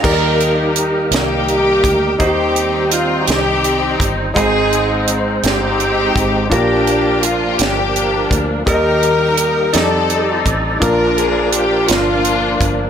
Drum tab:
CC |x-----|------|------|------|
HH |-xxxxx|xxxxxx|xxxxxx|xxxxxx|
SD |---o--|---o--|---o--|---o--|
BD |o----o|o----o|o----o|o----o|

CC |------|------|
HH |xxxxxx|xxxxxx|
SD |---o--|---o--|
BD |o----o|o----o|